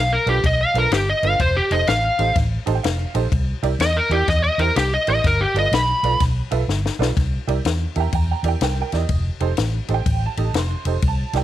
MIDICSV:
0, 0, Header, 1, 5, 480
1, 0, Start_track
1, 0, Tempo, 481155
1, 1399, Time_signature, 4, 2, 24, 8
1, 11410, End_track
2, 0, Start_track
2, 0, Title_t, "Electric slide guitar"
2, 0, Program_c, 0, 29
2, 0, Note_on_c, 0, 77, 113
2, 121, Note_off_c, 0, 77, 0
2, 126, Note_on_c, 0, 70, 98
2, 278, Note_off_c, 0, 70, 0
2, 289, Note_on_c, 0, 67, 98
2, 440, Note_off_c, 0, 67, 0
2, 456, Note_on_c, 0, 75, 91
2, 603, Note_off_c, 0, 75, 0
2, 609, Note_on_c, 0, 77, 101
2, 759, Note_off_c, 0, 77, 0
2, 782, Note_on_c, 0, 70, 94
2, 918, Note_on_c, 0, 67, 103
2, 926, Note_off_c, 0, 70, 0
2, 1073, Note_off_c, 0, 67, 0
2, 1092, Note_on_c, 0, 75, 99
2, 1241, Note_off_c, 0, 75, 0
2, 1245, Note_on_c, 0, 77, 99
2, 1397, Note_off_c, 0, 77, 0
2, 1399, Note_on_c, 0, 72, 91
2, 1554, Note_off_c, 0, 72, 0
2, 1561, Note_on_c, 0, 67, 96
2, 1715, Note_off_c, 0, 67, 0
2, 1715, Note_on_c, 0, 75, 100
2, 1871, Note_off_c, 0, 75, 0
2, 1871, Note_on_c, 0, 77, 113
2, 2339, Note_off_c, 0, 77, 0
2, 3807, Note_on_c, 0, 75, 115
2, 3956, Note_off_c, 0, 75, 0
2, 3958, Note_on_c, 0, 70, 90
2, 4111, Note_off_c, 0, 70, 0
2, 4111, Note_on_c, 0, 67, 93
2, 4267, Note_off_c, 0, 67, 0
2, 4275, Note_on_c, 0, 75, 92
2, 4417, Note_off_c, 0, 75, 0
2, 4429, Note_on_c, 0, 75, 113
2, 4584, Note_on_c, 0, 70, 100
2, 4586, Note_off_c, 0, 75, 0
2, 4743, Note_off_c, 0, 70, 0
2, 4750, Note_on_c, 0, 67, 99
2, 4906, Note_off_c, 0, 67, 0
2, 4925, Note_on_c, 0, 75, 107
2, 5074, Note_off_c, 0, 75, 0
2, 5089, Note_on_c, 0, 75, 112
2, 5236, Note_off_c, 0, 75, 0
2, 5252, Note_on_c, 0, 70, 92
2, 5397, Note_on_c, 0, 67, 94
2, 5398, Note_off_c, 0, 70, 0
2, 5550, Note_off_c, 0, 67, 0
2, 5573, Note_on_c, 0, 75, 101
2, 5718, Note_off_c, 0, 75, 0
2, 5732, Note_on_c, 0, 83, 101
2, 6188, Note_off_c, 0, 83, 0
2, 11410, End_track
3, 0, Start_track
3, 0, Title_t, "Honky-tonk piano"
3, 0, Program_c, 1, 3
3, 261, Note_on_c, 1, 62, 75
3, 264, Note_on_c, 1, 65, 73
3, 267, Note_on_c, 1, 69, 74
3, 274, Note_on_c, 1, 71, 86
3, 351, Note_off_c, 1, 62, 0
3, 352, Note_off_c, 1, 65, 0
3, 353, Note_off_c, 1, 69, 0
3, 357, Note_off_c, 1, 71, 0
3, 742, Note_on_c, 1, 62, 74
3, 748, Note_on_c, 1, 65, 66
3, 753, Note_on_c, 1, 69, 64
3, 754, Note_on_c, 1, 71, 80
3, 830, Note_off_c, 1, 62, 0
3, 834, Note_off_c, 1, 65, 0
3, 836, Note_off_c, 1, 69, 0
3, 837, Note_off_c, 1, 71, 0
3, 1223, Note_on_c, 1, 62, 72
3, 1229, Note_on_c, 1, 65, 64
3, 1231, Note_on_c, 1, 69, 62
3, 1235, Note_on_c, 1, 71, 75
3, 1311, Note_off_c, 1, 62, 0
3, 1314, Note_off_c, 1, 65, 0
3, 1315, Note_off_c, 1, 69, 0
3, 1317, Note_off_c, 1, 71, 0
3, 1712, Note_on_c, 1, 63, 80
3, 1714, Note_on_c, 1, 67, 69
3, 1719, Note_on_c, 1, 69, 69
3, 1723, Note_on_c, 1, 72, 78
3, 1794, Note_off_c, 1, 63, 0
3, 1796, Note_off_c, 1, 67, 0
3, 1798, Note_off_c, 1, 69, 0
3, 1800, Note_off_c, 1, 72, 0
3, 2179, Note_on_c, 1, 63, 78
3, 2187, Note_on_c, 1, 67, 67
3, 2187, Note_on_c, 1, 69, 68
3, 2191, Note_on_c, 1, 72, 87
3, 2268, Note_off_c, 1, 63, 0
3, 2271, Note_off_c, 1, 67, 0
3, 2272, Note_off_c, 1, 69, 0
3, 2273, Note_off_c, 1, 72, 0
3, 2653, Note_on_c, 1, 63, 88
3, 2656, Note_on_c, 1, 67, 80
3, 2658, Note_on_c, 1, 81, 71
3, 2662, Note_on_c, 1, 72, 94
3, 2663, Note_on_c, 1, 69, 79
3, 2741, Note_off_c, 1, 81, 0
3, 2743, Note_on_c, 1, 79, 70
3, 2744, Note_off_c, 1, 63, 0
3, 2746, Note_off_c, 1, 67, 0
3, 2749, Note_off_c, 1, 69, 0
3, 2749, Note_off_c, 1, 72, 0
3, 2826, Note_off_c, 1, 79, 0
3, 2826, Note_on_c, 1, 77, 75
3, 3135, Note_on_c, 1, 63, 88
3, 3139, Note_on_c, 1, 67, 81
3, 3140, Note_on_c, 1, 69, 80
3, 3142, Note_on_c, 1, 72, 95
3, 3225, Note_off_c, 1, 63, 0
3, 3227, Note_off_c, 1, 67, 0
3, 3227, Note_off_c, 1, 69, 0
3, 3228, Note_off_c, 1, 72, 0
3, 3276, Note_off_c, 1, 77, 0
3, 3618, Note_on_c, 1, 64, 89
3, 3620, Note_on_c, 1, 67, 85
3, 3622, Note_on_c, 1, 70, 85
3, 3631, Note_on_c, 1, 74, 101
3, 3706, Note_off_c, 1, 64, 0
3, 3707, Note_off_c, 1, 67, 0
3, 3708, Note_off_c, 1, 70, 0
3, 3712, Note_off_c, 1, 74, 0
3, 4099, Note_on_c, 1, 64, 83
3, 4100, Note_on_c, 1, 67, 71
3, 4103, Note_on_c, 1, 70, 68
3, 4108, Note_on_c, 1, 74, 85
3, 4186, Note_off_c, 1, 64, 0
3, 4187, Note_off_c, 1, 67, 0
3, 4188, Note_off_c, 1, 70, 0
3, 4191, Note_off_c, 1, 74, 0
3, 4582, Note_on_c, 1, 67, 67
3, 4583, Note_on_c, 1, 64, 79
3, 4591, Note_on_c, 1, 70, 65
3, 4592, Note_on_c, 1, 72, 86
3, 4667, Note_off_c, 1, 67, 0
3, 4668, Note_off_c, 1, 64, 0
3, 4672, Note_off_c, 1, 70, 0
3, 4672, Note_off_c, 1, 72, 0
3, 5062, Note_on_c, 1, 64, 74
3, 5065, Note_on_c, 1, 67, 64
3, 5066, Note_on_c, 1, 70, 70
3, 5073, Note_on_c, 1, 74, 84
3, 5147, Note_off_c, 1, 64, 0
3, 5149, Note_off_c, 1, 67, 0
3, 5149, Note_off_c, 1, 70, 0
3, 5152, Note_off_c, 1, 74, 0
3, 5539, Note_on_c, 1, 65, 76
3, 5545, Note_on_c, 1, 71, 70
3, 5546, Note_on_c, 1, 69, 68
3, 5552, Note_on_c, 1, 74, 80
3, 5626, Note_off_c, 1, 65, 0
3, 5629, Note_off_c, 1, 69, 0
3, 5629, Note_off_c, 1, 71, 0
3, 5632, Note_off_c, 1, 74, 0
3, 6024, Note_on_c, 1, 65, 77
3, 6029, Note_on_c, 1, 69, 73
3, 6029, Note_on_c, 1, 71, 71
3, 6035, Note_on_c, 1, 74, 80
3, 6108, Note_off_c, 1, 65, 0
3, 6111, Note_off_c, 1, 69, 0
3, 6111, Note_off_c, 1, 71, 0
3, 6113, Note_off_c, 1, 74, 0
3, 6494, Note_on_c, 1, 65, 88
3, 6501, Note_on_c, 1, 69, 84
3, 6506, Note_on_c, 1, 76, 97
3, 6507, Note_on_c, 1, 71, 86
3, 6583, Note_off_c, 1, 65, 0
3, 6587, Note_off_c, 1, 69, 0
3, 6589, Note_off_c, 1, 76, 0
3, 6590, Note_off_c, 1, 71, 0
3, 6975, Note_on_c, 1, 65, 82
3, 6977, Note_on_c, 1, 69, 77
3, 6982, Note_on_c, 1, 71, 79
3, 6984, Note_on_c, 1, 74, 88
3, 7064, Note_off_c, 1, 65, 0
3, 7065, Note_off_c, 1, 69, 0
3, 7068, Note_off_c, 1, 71, 0
3, 7069, Note_off_c, 1, 74, 0
3, 7456, Note_on_c, 1, 64, 87
3, 7460, Note_on_c, 1, 67, 77
3, 7466, Note_on_c, 1, 70, 79
3, 7473, Note_on_c, 1, 74, 98
3, 7545, Note_off_c, 1, 64, 0
3, 7547, Note_off_c, 1, 67, 0
3, 7550, Note_off_c, 1, 70, 0
3, 7553, Note_off_c, 1, 74, 0
3, 7938, Note_on_c, 1, 64, 71
3, 7941, Note_on_c, 1, 81, 61
3, 7945, Note_on_c, 1, 67, 67
3, 7948, Note_on_c, 1, 70, 67
3, 7954, Note_on_c, 1, 76, 81
3, 7979, Note_off_c, 1, 81, 0
3, 7980, Note_on_c, 1, 79, 80
3, 7988, Note_on_c, 1, 82, 88
3, 8027, Note_off_c, 1, 64, 0
3, 8030, Note_off_c, 1, 67, 0
3, 8031, Note_off_c, 1, 70, 0
3, 8034, Note_off_c, 1, 76, 0
3, 8111, Note_off_c, 1, 79, 0
3, 8115, Note_off_c, 1, 82, 0
3, 8126, Note_on_c, 1, 79, 74
3, 8130, Note_on_c, 1, 82, 87
3, 8270, Note_off_c, 1, 79, 0
3, 8278, Note_off_c, 1, 82, 0
3, 8293, Note_on_c, 1, 79, 68
3, 8298, Note_on_c, 1, 82, 83
3, 8422, Note_on_c, 1, 64, 75
3, 8423, Note_on_c, 1, 67, 68
3, 8431, Note_on_c, 1, 70, 63
3, 8432, Note_on_c, 1, 74, 74
3, 8434, Note_off_c, 1, 79, 0
3, 8443, Note_off_c, 1, 82, 0
3, 8462, Note_on_c, 1, 79, 89
3, 8509, Note_off_c, 1, 64, 0
3, 8510, Note_off_c, 1, 67, 0
3, 8514, Note_off_c, 1, 70, 0
3, 8514, Note_off_c, 1, 74, 0
3, 8601, Note_off_c, 1, 79, 0
3, 8611, Note_on_c, 1, 70, 70
3, 8615, Note_on_c, 1, 79, 85
3, 8754, Note_off_c, 1, 70, 0
3, 8762, Note_off_c, 1, 79, 0
3, 8784, Note_on_c, 1, 70, 78
3, 8793, Note_on_c, 1, 79, 83
3, 8897, Note_off_c, 1, 70, 0
3, 8906, Note_on_c, 1, 64, 68
3, 8908, Note_on_c, 1, 67, 62
3, 8912, Note_on_c, 1, 70, 62
3, 8916, Note_on_c, 1, 74, 79
3, 8931, Note_off_c, 1, 79, 0
3, 8946, Note_on_c, 1, 75, 88
3, 8992, Note_off_c, 1, 64, 0
3, 8993, Note_off_c, 1, 67, 0
3, 8995, Note_off_c, 1, 70, 0
3, 8997, Note_off_c, 1, 74, 0
3, 9188, Note_off_c, 1, 75, 0
3, 9380, Note_on_c, 1, 63, 83
3, 9384, Note_on_c, 1, 67, 76
3, 9385, Note_on_c, 1, 69, 80
3, 9392, Note_on_c, 1, 72, 101
3, 9470, Note_off_c, 1, 63, 0
3, 9472, Note_off_c, 1, 67, 0
3, 9472, Note_off_c, 1, 69, 0
3, 9475, Note_off_c, 1, 72, 0
3, 9861, Note_on_c, 1, 63, 71
3, 9866, Note_on_c, 1, 67, 74
3, 9867, Note_on_c, 1, 69, 70
3, 9876, Note_on_c, 1, 72, 81
3, 9916, Note_on_c, 1, 79, 100
3, 9951, Note_off_c, 1, 63, 0
3, 9954, Note_off_c, 1, 67, 0
3, 9954, Note_off_c, 1, 69, 0
3, 9958, Note_off_c, 1, 72, 0
3, 10210, Note_off_c, 1, 79, 0
3, 10234, Note_on_c, 1, 81, 90
3, 10350, Note_on_c, 1, 63, 70
3, 10355, Note_on_c, 1, 67, 66
3, 10357, Note_on_c, 1, 69, 65
3, 10362, Note_on_c, 1, 75, 80
3, 10436, Note_off_c, 1, 63, 0
3, 10438, Note_off_c, 1, 67, 0
3, 10440, Note_off_c, 1, 69, 0
3, 10442, Note_off_c, 1, 75, 0
3, 10530, Note_off_c, 1, 81, 0
3, 10550, Note_on_c, 1, 84, 92
3, 10834, Note_on_c, 1, 63, 70
3, 10840, Note_on_c, 1, 67, 64
3, 10842, Note_on_c, 1, 69, 66
3, 10845, Note_on_c, 1, 72, 78
3, 10919, Note_off_c, 1, 63, 0
3, 10922, Note_off_c, 1, 67, 0
3, 10923, Note_off_c, 1, 69, 0
3, 10924, Note_off_c, 1, 72, 0
3, 11003, Note_off_c, 1, 84, 0
3, 11051, Note_on_c, 1, 81, 93
3, 11312, Note_on_c, 1, 64, 77
3, 11316, Note_on_c, 1, 67, 73
3, 11319, Note_on_c, 1, 70, 72
3, 11325, Note_on_c, 1, 74, 85
3, 11339, Note_off_c, 1, 81, 0
3, 11344, Note_on_c, 1, 79, 88
3, 11398, Note_off_c, 1, 64, 0
3, 11401, Note_off_c, 1, 67, 0
3, 11402, Note_off_c, 1, 70, 0
3, 11405, Note_off_c, 1, 74, 0
3, 11410, Note_off_c, 1, 79, 0
3, 11410, End_track
4, 0, Start_track
4, 0, Title_t, "Fingered electric bass"
4, 0, Program_c, 2, 33
4, 0, Note_on_c, 2, 35, 88
4, 161, Note_off_c, 2, 35, 0
4, 263, Note_on_c, 2, 35, 93
4, 374, Note_off_c, 2, 35, 0
4, 434, Note_on_c, 2, 35, 92
4, 633, Note_off_c, 2, 35, 0
4, 740, Note_on_c, 2, 35, 83
4, 852, Note_off_c, 2, 35, 0
4, 912, Note_on_c, 2, 31, 84
4, 1111, Note_off_c, 2, 31, 0
4, 1223, Note_on_c, 2, 31, 94
4, 1334, Note_off_c, 2, 31, 0
4, 1390, Note_on_c, 2, 29, 97
4, 1590, Note_off_c, 2, 29, 0
4, 1702, Note_on_c, 2, 29, 91
4, 1812, Note_off_c, 2, 29, 0
4, 1876, Note_on_c, 2, 33, 93
4, 2073, Note_off_c, 2, 33, 0
4, 2183, Note_on_c, 2, 33, 100
4, 2293, Note_off_c, 2, 33, 0
4, 2355, Note_on_c, 2, 33, 92
4, 2553, Note_off_c, 2, 33, 0
4, 2663, Note_on_c, 2, 33, 85
4, 2772, Note_off_c, 2, 33, 0
4, 2836, Note_on_c, 2, 29, 86
4, 3033, Note_off_c, 2, 29, 0
4, 3140, Note_on_c, 2, 34, 86
4, 3250, Note_off_c, 2, 34, 0
4, 3313, Note_on_c, 2, 36, 97
4, 3510, Note_off_c, 2, 36, 0
4, 3618, Note_on_c, 2, 36, 89
4, 3729, Note_off_c, 2, 36, 0
4, 3780, Note_on_c, 2, 40, 86
4, 3981, Note_off_c, 2, 40, 0
4, 4086, Note_on_c, 2, 40, 97
4, 4200, Note_off_c, 2, 40, 0
4, 4266, Note_on_c, 2, 40, 95
4, 4466, Note_off_c, 2, 40, 0
4, 4570, Note_on_c, 2, 40, 81
4, 4683, Note_off_c, 2, 40, 0
4, 4749, Note_on_c, 2, 36, 88
4, 4947, Note_off_c, 2, 36, 0
4, 5065, Note_on_c, 2, 33, 91
4, 5173, Note_off_c, 2, 33, 0
4, 5231, Note_on_c, 2, 31, 98
4, 5429, Note_off_c, 2, 31, 0
4, 5529, Note_on_c, 2, 31, 90
4, 5642, Note_off_c, 2, 31, 0
4, 5702, Note_on_c, 2, 35, 91
4, 5903, Note_off_c, 2, 35, 0
4, 6016, Note_on_c, 2, 35, 99
4, 6127, Note_off_c, 2, 35, 0
4, 6188, Note_on_c, 2, 35, 92
4, 6387, Note_off_c, 2, 35, 0
4, 6500, Note_on_c, 2, 35, 82
4, 6610, Note_off_c, 2, 35, 0
4, 6664, Note_on_c, 2, 31, 89
4, 6864, Note_off_c, 2, 31, 0
4, 6973, Note_on_c, 2, 35, 87
4, 7085, Note_off_c, 2, 35, 0
4, 7150, Note_on_c, 2, 36, 91
4, 7349, Note_off_c, 2, 36, 0
4, 7458, Note_on_c, 2, 36, 85
4, 7569, Note_off_c, 2, 36, 0
4, 7629, Note_on_c, 2, 40, 85
4, 7829, Note_off_c, 2, 40, 0
4, 7942, Note_on_c, 2, 40, 93
4, 8052, Note_off_c, 2, 40, 0
4, 8105, Note_on_c, 2, 40, 90
4, 8306, Note_off_c, 2, 40, 0
4, 8410, Note_on_c, 2, 40, 81
4, 8524, Note_off_c, 2, 40, 0
4, 8590, Note_on_c, 2, 36, 93
4, 8790, Note_off_c, 2, 36, 0
4, 8905, Note_on_c, 2, 40, 83
4, 9015, Note_off_c, 2, 40, 0
4, 9068, Note_on_c, 2, 29, 89
4, 9269, Note_off_c, 2, 29, 0
4, 9383, Note_on_c, 2, 29, 88
4, 9494, Note_off_c, 2, 29, 0
4, 9559, Note_on_c, 2, 33, 95
4, 9757, Note_off_c, 2, 33, 0
4, 9864, Note_on_c, 2, 33, 93
4, 9976, Note_off_c, 2, 33, 0
4, 10034, Note_on_c, 2, 33, 98
4, 10235, Note_off_c, 2, 33, 0
4, 10349, Note_on_c, 2, 33, 88
4, 10459, Note_off_c, 2, 33, 0
4, 10510, Note_on_c, 2, 29, 89
4, 10712, Note_off_c, 2, 29, 0
4, 10826, Note_on_c, 2, 29, 88
4, 10938, Note_off_c, 2, 29, 0
4, 10999, Note_on_c, 2, 36, 98
4, 11199, Note_off_c, 2, 36, 0
4, 11307, Note_on_c, 2, 36, 91
4, 11410, Note_off_c, 2, 36, 0
4, 11410, End_track
5, 0, Start_track
5, 0, Title_t, "Drums"
5, 268, Note_on_c, 9, 51, 60
5, 368, Note_off_c, 9, 51, 0
5, 437, Note_on_c, 9, 36, 112
5, 440, Note_on_c, 9, 51, 79
5, 537, Note_off_c, 9, 36, 0
5, 539, Note_off_c, 9, 51, 0
5, 750, Note_on_c, 9, 51, 63
5, 850, Note_off_c, 9, 51, 0
5, 913, Note_on_c, 9, 51, 85
5, 925, Note_on_c, 9, 38, 120
5, 1013, Note_off_c, 9, 51, 0
5, 1025, Note_off_c, 9, 38, 0
5, 1228, Note_on_c, 9, 51, 64
5, 1327, Note_off_c, 9, 51, 0
5, 1392, Note_on_c, 9, 51, 83
5, 1393, Note_on_c, 9, 36, 104
5, 1492, Note_off_c, 9, 51, 0
5, 1493, Note_off_c, 9, 36, 0
5, 1704, Note_on_c, 9, 51, 66
5, 1803, Note_off_c, 9, 51, 0
5, 1869, Note_on_c, 9, 51, 87
5, 1881, Note_on_c, 9, 38, 116
5, 1969, Note_off_c, 9, 51, 0
5, 1981, Note_off_c, 9, 38, 0
5, 2183, Note_on_c, 9, 51, 63
5, 2283, Note_off_c, 9, 51, 0
5, 2351, Note_on_c, 9, 51, 88
5, 2352, Note_on_c, 9, 36, 111
5, 2363, Note_on_c, 9, 38, 34
5, 2451, Note_off_c, 9, 51, 0
5, 2452, Note_off_c, 9, 36, 0
5, 2463, Note_off_c, 9, 38, 0
5, 2661, Note_on_c, 9, 51, 67
5, 2761, Note_off_c, 9, 51, 0
5, 2834, Note_on_c, 9, 51, 93
5, 2846, Note_on_c, 9, 38, 119
5, 2934, Note_off_c, 9, 51, 0
5, 2946, Note_off_c, 9, 38, 0
5, 3139, Note_on_c, 9, 51, 71
5, 3239, Note_off_c, 9, 51, 0
5, 3311, Note_on_c, 9, 36, 109
5, 3315, Note_on_c, 9, 51, 81
5, 3411, Note_off_c, 9, 36, 0
5, 3415, Note_off_c, 9, 51, 0
5, 3625, Note_on_c, 9, 51, 65
5, 3725, Note_off_c, 9, 51, 0
5, 3789, Note_on_c, 9, 51, 90
5, 3801, Note_on_c, 9, 38, 117
5, 3888, Note_off_c, 9, 51, 0
5, 3900, Note_off_c, 9, 38, 0
5, 4100, Note_on_c, 9, 51, 62
5, 4200, Note_off_c, 9, 51, 0
5, 4269, Note_on_c, 9, 36, 123
5, 4269, Note_on_c, 9, 51, 82
5, 4281, Note_on_c, 9, 38, 33
5, 4368, Note_off_c, 9, 51, 0
5, 4369, Note_off_c, 9, 36, 0
5, 4380, Note_off_c, 9, 38, 0
5, 4580, Note_on_c, 9, 51, 62
5, 4680, Note_off_c, 9, 51, 0
5, 4751, Note_on_c, 9, 51, 88
5, 4763, Note_on_c, 9, 38, 120
5, 4851, Note_off_c, 9, 51, 0
5, 4862, Note_off_c, 9, 38, 0
5, 5058, Note_on_c, 9, 51, 67
5, 5158, Note_off_c, 9, 51, 0
5, 5230, Note_on_c, 9, 36, 109
5, 5230, Note_on_c, 9, 51, 82
5, 5242, Note_on_c, 9, 38, 33
5, 5329, Note_off_c, 9, 51, 0
5, 5330, Note_off_c, 9, 36, 0
5, 5341, Note_off_c, 9, 38, 0
5, 5544, Note_on_c, 9, 51, 62
5, 5644, Note_off_c, 9, 51, 0
5, 5712, Note_on_c, 9, 51, 93
5, 5724, Note_on_c, 9, 38, 124
5, 5812, Note_off_c, 9, 51, 0
5, 5824, Note_off_c, 9, 38, 0
5, 6021, Note_on_c, 9, 51, 62
5, 6121, Note_off_c, 9, 51, 0
5, 6187, Note_on_c, 9, 51, 87
5, 6191, Note_on_c, 9, 36, 114
5, 6199, Note_on_c, 9, 38, 33
5, 6287, Note_off_c, 9, 51, 0
5, 6290, Note_off_c, 9, 36, 0
5, 6299, Note_off_c, 9, 38, 0
5, 6498, Note_on_c, 9, 51, 67
5, 6598, Note_off_c, 9, 51, 0
5, 6677, Note_on_c, 9, 38, 73
5, 6777, Note_off_c, 9, 38, 0
5, 6841, Note_on_c, 9, 38, 74
5, 6941, Note_off_c, 9, 38, 0
5, 7003, Note_on_c, 9, 38, 113
5, 7103, Note_off_c, 9, 38, 0
5, 7151, Note_on_c, 9, 36, 106
5, 7153, Note_on_c, 9, 51, 78
5, 7165, Note_on_c, 9, 38, 31
5, 7250, Note_off_c, 9, 36, 0
5, 7253, Note_off_c, 9, 51, 0
5, 7265, Note_off_c, 9, 38, 0
5, 7466, Note_on_c, 9, 51, 65
5, 7566, Note_off_c, 9, 51, 0
5, 7631, Note_on_c, 9, 51, 82
5, 7643, Note_on_c, 9, 38, 110
5, 7731, Note_off_c, 9, 51, 0
5, 7743, Note_off_c, 9, 38, 0
5, 7937, Note_on_c, 9, 51, 58
5, 8036, Note_off_c, 9, 51, 0
5, 8106, Note_on_c, 9, 51, 79
5, 8109, Note_on_c, 9, 36, 110
5, 8206, Note_off_c, 9, 51, 0
5, 8208, Note_off_c, 9, 36, 0
5, 8418, Note_on_c, 9, 51, 65
5, 8517, Note_off_c, 9, 51, 0
5, 8587, Note_on_c, 9, 51, 86
5, 8599, Note_on_c, 9, 38, 118
5, 8687, Note_off_c, 9, 51, 0
5, 8699, Note_off_c, 9, 38, 0
5, 8900, Note_on_c, 9, 51, 60
5, 8912, Note_on_c, 9, 38, 34
5, 9000, Note_off_c, 9, 51, 0
5, 9012, Note_off_c, 9, 38, 0
5, 9066, Note_on_c, 9, 51, 78
5, 9070, Note_on_c, 9, 36, 100
5, 9166, Note_off_c, 9, 51, 0
5, 9170, Note_off_c, 9, 36, 0
5, 9381, Note_on_c, 9, 51, 63
5, 9481, Note_off_c, 9, 51, 0
5, 9546, Note_on_c, 9, 51, 85
5, 9558, Note_on_c, 9, 38, 118
5, 9645, Note_off_c, 9, 51, 0
5, 9657, Note_off_c, 9, 38, 0
5, 9860, Note_on_c, 9, 51, 59
5, 9960, Note_off_c, 9, 51, 0
5, 10036, Note_on_c, 9, 36, 108
5, 10036, Note_on_c, 9, 51, 90
5, 10135, Note_off_c, 9, 51, 0
5, 10136, Note_off_c, 9, 36, 0
5, 10348, Note_on_c, 9, 51, 68
5, 10448, Note_off_c, 9, 51, 0
5, 10516, Note_on_c, 9, 51, 94
5, 10528, Note_on_c, 9, 38, 117
5, 10616, Note_off_c, 9, 51, 0
5, 10628, Note_off_c, 9, 38, 0
5, 10825, Note_on_c, 9, 51, 71
5, 10924, Note_off_c, 9, 51, 0
5, 10996, Note_on_c, 9, 51, 82
5, 10999, Note_on_c, 9, 36, 107
5, 11096, Note_off_c, 9, 51, 0
5, 11099, Note_off_c, 9, 36, 0
5, 11306, Note_on_c, 9, 51, 67
5, 11318, Note_on_c, 9, 38, 32
5, 11406, Note_off_c, 9, 51, 0
5, 11410, Note_off_c, 9, 38, 0
5, 11410, End_track
0, 0, End_of_file